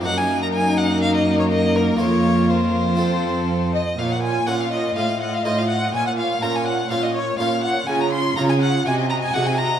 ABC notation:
X:1
M:4/4
L:1/16
Q:1/4=123
K:Bbm
V:1 name="Violin"
g a2 b a2 g2 f e2 d e2 B2 | d4 c8- c2 e2 | f g a2 g f e2 f2 g f e f g2 | a g f2 b a g2 f e d2 f2 g2 |
a b c'2 b a g2 a2 b a g a b2 |]
V:2 name="Violin section"
E16 | F12- F2 e2 | f g a2 g f e2 f2 g f e f g2 | a g f2 b a g2 f e d2 f2 g2 |
a b c'2 b a g2 a2 b a g a b2 |]
V:3 name="Violin section"
B16- | B8 =A6 z2 | d2 d2 d2 d2 e2 e2 e2 e2 | d2 d2 d2 d2 d2 d2 d2 d2 |
d2 d2 d2 d2 e2 e2 e2 e2 |]
V:4 name="Viola section"
B,16- | B,8 C6 z2 | F2 F2 F2 F2 F2 F2 F2 F2 | F2 F2 F2 F2 F2 F2 F2 F2 |
F2 F2 F2 F2 G2 G2 G2 G2 |]
V:5 name="Harpsichord"
[B,Ee]16 | [B,FB]8 [CF=A]8 | z4 [DFB]4 z4 [EFc]4 | z4 [DFB]4 [DFB]4 [DFB]4 |
z4 [DFA]4 z4 [EGA]4 |]
V:6 name="Harpsichord" clef=bass
G,,16 | F,,12- F,,2 z2 | B,,4 B,,4 =A,,4 A,,4 | B,,4 B,,4 B,,4 B,,4 |
D,4 D,4 C,4 C,4 |]
V:7 name="Cello section" clef=bass
G,,16 | F,,12- F,,2 z2 | B,,4 B,,4 =A,,4 A,,4 | B,,4 B,,4 B,,4 B,,4 |
D,4 D,4 C,4 C,4 |]